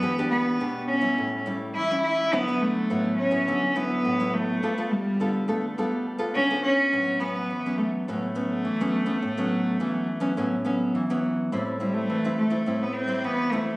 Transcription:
<<
  \new Staff \with { instrumentName = "Cello" } { \time 4/4 \key a \major \tempo 4 = 104 b8 b4 cis'4 r8 e'8 e'8 | b8 a4 cis'4 b4 a8~ | a8 g4 a4 r8 cis'8 cis'8~ | cis'8 b4 a8 a2~ |
a2. r4 | \key a \minor r8 g16 a8. a8. b16 c'8 b8 a8 | }
  \new Staff \with { instrumentName = "Nylon-string guitar" } { \time 4/4 \key a \major << { <b d' g'>16 <b d' g'>8. <b d' g'>8. <g cis' e'>8. <g cis' e'>8 r16 <g cis' e'>8. | <fis b e'>16 <fis b e'>8. <fis b e'>8. <fis b e'>16 <fis b e'>16 r16 <fis b e'>8. <fis b e'>8. | <b f' a'>16 <b f' a'>8. <b f' a'>8 <b f' a'>16 r16 <b f' a'>8 r16 <b f' a'>8 <b f' a'>8. | <fis b cis'>8 <fis b cis'>8 r16 <fis b cis'>8. <fis b cis'>16 r16 <fis b cis'>8 r16 <fis b cis'>8 <fis b cis'>16 |
r16 <fis b cis'>8. <fis b cis'>8 r16 <fis b cis'>16 <fis b cis'>16 r16 <fis b cis'>8. <fis b cis'>8. | \key a \minor <g c' e'>8 <g c' e'>8. <g c' e'>8 <g c' e'>16 <g c' e'>8. <g c' e'>8. <g c' e'>16 r16 | } \\ { e4 b,4 a,4 e4 | d4 a,4 d4 a,4 | g4 d4 g4 d4 | a,4 e4 a,4 e4 |
a,4 e4 a,4 e4 | a,4 e4 a,4 e4 | } >> }
>>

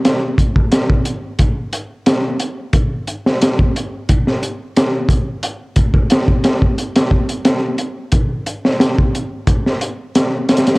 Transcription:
\new DrumStaff \with { instrumentName = "Drums" } \drummode { \time 4/4 \tempo 4 = 89 <hh sn>8 <hh bd>16 bd16 <hh sn>16 bd16 hh8 <hh bd>8 hh8 <hh sn>8 hh8 | <hh bd>8 hh16 sn16 <hh sn>16 bd16 hh8 <hh bd>16 sn16 hh8 <hh sn>8 <hh bd>8 | hh8 <hh bd>16 bd16 <hh sn>16 bd16 <hh sn>16 bd16 hh16 <hh sn>16 bd16 hh16 <hh sn>8 hh8 | <hh bd>8 hh16 sn16 <hh sn>16 bd16 hh8 <hh bd>16 sn16 hh8 <hh sn>8 <hh sn>32 <hh sn>32 <hh sn>16 | }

